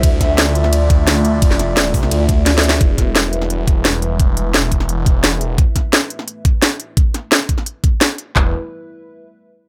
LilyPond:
<<
  \new Staff \with { instrumentName = "Analog synth pad" } { \time 4/4 \key e \phrygian \tempo 4 = 173 << { <f' d'' e''>1~ | <f' d'' e''>1 | <e' b' e''>1~ | <e' b' e''>1~ |
<e' b' e''>1~ | <e' b' e''>1 | <g e' b' e''>8 r2. r8 | } \\ { a1~ | a1 | g1~ | g1 |
a1~ | a1 | r1 | } >> }
  \new Staff \with { instrumentName = "Detuned saw bass" } { \clef bass \time 4/4 \key e \phrygian d,1 | f,,4. c,8 d,4. d,8 | e,,1 | e,,1 |
r1 | r1 | e,,8 r2. r8 | }
  \new DrumStaff \with { instrumentName = "Drums" } \drummode { \time 4/4 <hh bd cymr>8 <hh bd sn>8 <hh cymr sn>8 hh16 sn16 <hh cymr>8 <hh bd>8 <hh cymr sn>8 hh8 | <hh bd cymr>16 sn16 <hh sn>8 <hh cymr sn>8 <hho bd>16 sn16 <hh cymr>8 <hh bd>8 \tuplet 3/2 { <hh cymr sn>16 r16 sn16 hh16 sn16 r16 } | <hh bd>8 <hh bd sn>8 <hh sn>8 hh16 sn16 hh8 <hh bd>8 <hh sn>8 hh8 | <hh bd>8 hh8 <hh sn>8 <hh bd>16 sn16 hh8 <hh bd>8 <hh sn>8 hh8 |
<hh bd>8 <hh bd sn>8 <hh sn>8 hh16 sn16 hh8 <hh bd>8 <hh sn>8 hh8 | <hh bd>8 <hh sn>8 <hh sn>8 <hh bd>16 sn16 hh8 <hh bd>8 <hh sn>8 hh8 | <hc bd>4 r4 r4 r4 | }
>>